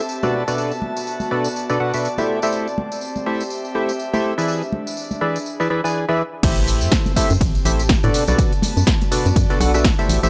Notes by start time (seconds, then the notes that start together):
Already playing: C4 G4 E5 A5
0.09 tambourine
0.23 B2 D4 F#4 A4 B4 D5, tambourine, high conga
0.33 B3
0.48 B2 D4 F#4 A4 B4 D5, tambourine
0.58 tambourine
0.72 tambourine
0.82 high conga
0.97 tambourine
1.07 tambourine
1.20 D5, tambourine, high conga
1.31 B2 D4 F#4 A4 B4 D5
1.44 tambourine
1.56 tambourine
1.69 B2 D4 F#4 A4 B4 D5, tambourine
1.80 B2 D4 F#4 A4 B4 F#5
1.94 B2 D4 F#4 A4 B4 E5, tambourine
2.05 tambourine
2.18 A3 E4 G4 A4 C5 E5, tambourine, high conga
2.29 C4
2.42 A3 E4 G4 A4 C5 E5, tambourine
2.53 tambourine
2.67 tambourine
2.78 high conga
2.92 tambourine
2.98 G4, tambourine
3.16 tambourine, high conga
3.20 E5
3.26 A3 E4 G4 A4 C5 E5
3.40 tambourine
3.50 tambourine
3.65 tambourine
3.75 A3 E4 G4 A4 C5 E5
3.89 tambourine
3.99 tambourine
4.13 A3 E4 G4 A4 C5 E5, tambourine, high conga
4.38 E3 E4 G#4 B4 D5 E5, tambourine
4.48 D4, tambourine
4.62 tambourine
4.72 high conga
4.87 tambourine
4.97 tambourine
5.11 G#4, tambourine, high conga
5.16 B5
5.21 E3 E4 G#4 B4 D5 E5
5.36 tambourine
5.46 tambourine
5.60 E3 E4 G#4 B4 D5 E5, tambourine
5.70 E3 E4 G#4 B4 D5 E5
5.84 E3 E4 G#4 B4 D5 G#5, tambourine
6.09 E3 E4 G#4 B4 D5 E5
6.43 A1 A3 C4 E4 G4 A4 C5 E5, kick, closed hi-hat, crash, ride, tambourine
6.57 closed hi-hat, tambourine
6.68 open hi-hat, tambourine
6.81 F#2, closed hi-hat, tambourine
6.92 kick, snare, closed hi-hat, ride, tambourine
7.06 closed hi-hat, tambourine, high conga
7.13 A3 E4 G4 A4 C5 E5, kick, open hi-hat
7.17 A5, tambourine
7.30 F#2, closed hi-hat, tambourine
7.41 A1, kick, closed hi-hat, ride, tambourine
7.55 closed hi-hat, tambourine
7.65 A1 A3 E4 G4 A4 C5 E5, open hi-hat, tambourine
7.79 closed hi-hat, tambourine
7.89 kick, snare, closed hi-hat, ride, tambourine
8.03 A2 B2 D4 F#4 A4 B4 D5, closed hi-hat, tambourine
8.14 B3, open hi-hat, tambourine
8.27 B1 B2 D4 F#4 A4 B4 D5, cross-stick, closed hi-hat, tambourine
8.38 kick, closed hi-hat, ride, tambourine
8.52 closed hi-hat, tambourine
8.60 F#4, open hi-hat, tambourine, high conga
8.77 F#2, closed hi-hat, tambourine
8.87 D5, kick, snare, closed hi-hat, ride, tambourine
9.01 closed hi-hat, tambourine, high conga
9.12 B2 D4 F#4 A4 B4 D5, open hi-hat, tambourine
9.26 F#2, closed hi-hat, tambourine
9.36 F#2, kick, closed hi-hat, ride, tambourine
9.50 B2 D4 F#4 A4 B4 D5, closed hi-hat, tambourine
9.60 B1 B2 D4 F#4 A4 B4 F#5, cross-stick, open hi-hat, tambourine
9.74 B2 D4 F#4 A4 B4 E5, cross-stick, closed hi-hat, tambourine
9.84 kick, snare, closed hi-hat, ride, tambourine
9.99 A3 E4 G4 A4 C5 E5, closed hi-hat, tambourine, high conga
10.09 A1 C4, open hi-hat, tambourine
10.23 A1 A3 E4 G4 A4 C5 E5, closed hi-hat, tambourine